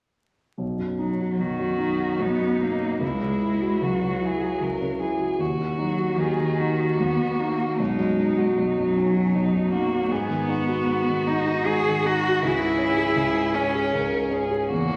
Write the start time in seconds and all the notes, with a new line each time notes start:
0.58 B1
0.77 F#2
0.99 F#3 D#4
1.20 F#4
1.39 B1 D#3 F#4
1.59 F#2
1.78 D#4
1.99 F#4
2.18 B1 B3 D#4
2.39 F#2
2.60 A#3 D#4
2.80 F#4
3.01 C#2 G#3 E4
3.21 C#3
3.42 E4
3.61 F#4
3.82 C#2 F#3 F#4
4.01 C#3
4.22 E4 G#4
4.41 F#4
4.61 C#2 A#4
4.81 C#3
5.01 E4 G#4
5.20 F#4
5.39 D#2 F#4
5.58 D#3
5.77 F#3 D#4
5.98 F#4
6.18 D#2 D#3 G#4
6.39 D#3
6.59 D#4 F#4
6.80 F#4
7.00 D#2 B3
7.20 D#3
7.39 A#3 D#4
7.60 F#4
7.78 B1 G#3 D#4
7.97 F#2
8.17 D#4
8.37 F#4
8.56 B1 F#3 D#4
8.77 F#2
8.96 C#4 D#4
9.15 F#4
9.34 B1 D#4
9.53 F#2
9.71 A#3 D#4 F#4
9.91 F#4
10.10 G#2 B3 G#4
10.29 D#3
10.48 D#4 F#4
10.67 F#4
10.86 G#2
11.07 D#3
11.26 D#4
11.46 F#4
11.66 G#2 F#4 G#4
11.86 D#3
12.05 D#4 F#4
12.23 F#4
12.43 C#2 E4 G#4
12.60 G#2
12.79 C#4
12.97 G#4
13.16 C#2
13.34 G#2
13.54 C#4
13.74 G#4
13.93 C#2 A#4
14.12 G#2
14.31 C#4 G#4
14.50 G#4
14.70 E2 A#3 F#4
14.90 E3